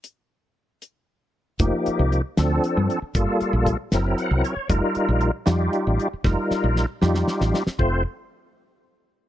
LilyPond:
<<
  \new Staff \with { instrumentName = "Tonewheel organ" } { \time 6/8 \key f \mixolydian \tempo 4. = 77 << { r2. | r2. | r2 ges''8 des''8 | r2. |
r2. | r2. | } \\ { r2. | <f bes ees' g'>4 r8 <f c' d' a'>4 r8 | <g bes f' a'>4 r8 <ges c' fes' bes'>4 r8 | <g ees' f' bes'>4 r8 <g ees' f' g'>4 r8 |
<g ees' f' bes'>4 r8 <g ees' f' g'>4 r8 | <a c' f' c''>8 r2 r8 | } >> }
  \new Staff \with { instrumentName = "Fretless electric bass" } { \clef bass \time 6/8 \key f \mixolydian r2. | f,,16 r8 c,8 r16 d,8 r16 g,16 r8 | g,,16 r8 bes,,8 r16 ges,,8 r16 c,16 r8 | f,,16 r8 bes,,8 r16 f,8 r16 a,,16 r8 |
f,,16 r8 bes,,8 r16 f,8 r16 a,,16 r8 | f,,8 r2 r8 | }
  \new DrumStaff \with { instrumentName = "Drums" } \drummode { \time 6/8 hh4. hh4. | <hh bd>8 hh8 hh8 <hh sn>8 hh8 hh8 | <hh bd>8 hh8 <hh bd>8 <hh sn>8 hh8 hh8 | <hh bd>8 hh8 hh8 <hh sn>8 hh8 hh8 |
<bd sn>8 sn8 sn8 sn16 sn16 sn16 sn16 sn16 sn16 | bd4. r4. | }
>>